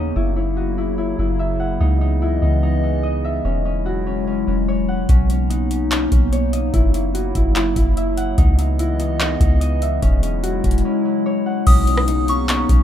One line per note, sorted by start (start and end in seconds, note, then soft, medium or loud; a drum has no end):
0.00 0.12 D#2 loud
0.00 8.34 C#3 medium
0.00 1.77 A#3 medium
0.00 0.14 B3 medium
0.00 2.44 C#4 medium
0.00 0.14 D#4 medium
0.00 0.22 D#4 medium
0.00 1.66 C#5 medium
0.00 0.22 D#5 medium
0.00 impact medium
0.16 1.15 F#1 loud
0.16 1.79 F#3 medium
0.16 1.79 E4 medium
0.16 0.36 E4 loud
0.36 0.77 E4 medium
0.57 3.00 F#4 medium
0.78 0.97 E4 medium
0.98 1.19 E4 medium
1.19 1.78 F#1 loud
1.19 1.86 E4 medium
1.39 1.86 E5 loud
1.60 3.20 F#5 medium
1.80 2.40 C#2 loud
1.80 3.43 E3 medium
1.80 3.43 B3 medium
1.80 2.01 D#4 loud
1.80 3.43 D#5 medium
2.01 2.42 D#4 medium
2.22 4.83 E4 medium
2.42 3.41 C#2 loud
2.42 2.62 D#4 medium
2.63 2.83 D#4 medium
2.83 5.49 D#4 medium
3.03 4.82 D#5 medium
3.25 4.97 E5 medium
3.45 4.43 E1 loud
3.45 5.07 F#3 medium
3.45 5.07 G#3 medium
3.45 3.65 C#4 loud
3.45 5.07 E4 medium
3.65 4.06 C#4 medium
3.86 6.29 F#4 medium
4.07 4.27 C#4 medium
4.27 4.47 C#4 medium
4.47 5.07 E1 loud
4.47 5.09 C#4 medium
4.68 6.32 C#5 medium
4.88 6.49 F#5 medium
5.09 6.08 B1 loud
5.09 8.35 A#3 medium
5.09 6.72 B3 medium
5.09 5.30 C#4 loud
5.09 6.72 D#4 medium
5.09 kick loud
5.09 closed hi-hat medium
5.30 5.70 C#4 medium
5.30 closed hi-hat medium
5.50 6.80 D#4 medium
5.50 closed hi-hat medium
5.71 5.91 C#4 medium
5.71 closed hi-hat medium
5.91 6.11 C#4 medium
5.91 clap loud
5.91 closed hi-hat medium
6.12 6.71 B1 loud
6.12 9.02 C#4 medium
6.12 kick medium
6.12 closed hi-hat medium
6.32 8.24 C#5 medium
6.32 closed hi-hat medium
6.53 6.80 D#5 medium
6.53 closed hi-hat medium
6.74 7.33 F#1 loud
6.74 8.36 F#3 medium
6.74 6.93 E4 loud
6.74 8.36 E4 medium
6.74 kick loud
6.74 closed hi-hat medium
6.94 7.35 E4 medium
6.94 closed hi-hat medium
7.14 9.58 F#4 medium
7.14 closed hi-hat medium
7.35 7.75 F#1 loud
7.35 7.55 E4 medium
7.35 kick medium
7.35 closed hi-hat medium
7.55 7.76 E4 medium
7.55 clap loud
7.55 closed hi-hat medium
7.76 8.35 F#1 loud
7.76 8.44 E4 medium
7.76 kick medium
7.76 closed hi-hat medium
7.97 8.44 E5 medium
7.97 closed hi-hat medium
8.17 9.78 F#5 medium
8.17 closed hi-hat medium
8.38 9.37 C#2 loud
8.38 11.63 C#3 medium
8.38 10.01 E3 medium
8.38 10.01 B3 medium
8.38 8.58 D#4 loud
8.38 10.01 D#5 medium
8.38 kick loud
8.38 closed hi-hat medium
8.58 8.99 D#4 medium
8.58 closed hi-hat medium
8.79 11.40 E4 medium
8.79 closed hi-hat medium
8.99 9.20 D#4 medium
8.99 closed hi-hat medium
9.20 9.40 D#4 medium
9.20 clap loud
9.20 closed hi-hat medium
9.40 10.00 C#2 loud
9.40 12.07 D#4 medium
9.40 kick medium
9.40 closed hi-hat medium
9.61 11.39 D#5 medium
9.61 closed hi-hat medium
9.82 11.54 E5 medium
9.82 closed hi-hat medium
10.02 10.62 E1 loud
10.02 11.65 F#3 medium
10.02 11.65 G#3 medium
10.02 10.23 C#4 loud
10.02 11.65 E4 medium
10.02 kick loud
10.02 closed hi-hat medium
10.23 10.64 C#4 medium
10.23 closed hi-hat medium
10.43 12.83 F#4 medium
10.43 closed hi-hat medium
10.64 10.84 E1 loud
10.64 10.85 C#4 medium
10.64 kick medium
10.64 closed hi-hat medium
10.64 open hi-hat soft
10.71 closed hi-hat medium
10.78 closed hi-hat medium
10.85 11.04 C#4 medium
11.05 11.66 C#4 medium
11.26 12.83 C#5 medium
11.46 12.83 F#5 medium
11.67 12.65 B1 loud
11.67 12.83 C#3 medium
11.67 12.83 A#3 medium
11.67 12.83 B3 medium
11.67 11.88 C#4 loud
11.67 12.83 D#4 medium
11.67 12.25 D#6 loud
11.67 kick loud
11.67 closed hi-hat medium
11.67 crash loud
11.87 12.28 C#4 medium
11.87 closed hi-hat medium
11.97 cross-stick loud
12.07 12.83 D#4 medium
12.07 closed hi-hat medium
12.28 12.48 C#4 medium
12.28 12.83 C#6 medium
12.28 closed hi-hat medium
12.49 12.69 C#4 loud
12.49 clap loud
12.49 closed hi-hat medium
12.69 12.83 B1 loud
12.69 12.83 C#4 medium
12.69 kick medium
12.69 closed hi-hat medium